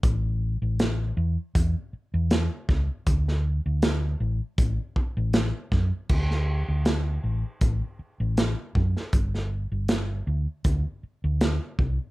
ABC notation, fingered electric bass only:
X:1
M:4/4
L:1/16
Q:"Swing 16ths" 1/4=79
K:Dmix
V:1 name="Fingered electric bass" clef=bass
A,,,3 A,,,3 E,, z E,, z2 E,,2 z ^C,, z | D,,3 D,,3 A,,, z A,,, z2 A,,,2 z F,, z | D,,3 D,,3 A,,, z A,,, z2 A,,,2 z F,, z | G,,,3 G,,,3 D,, z D,, z2 D,,2 z C,, z |]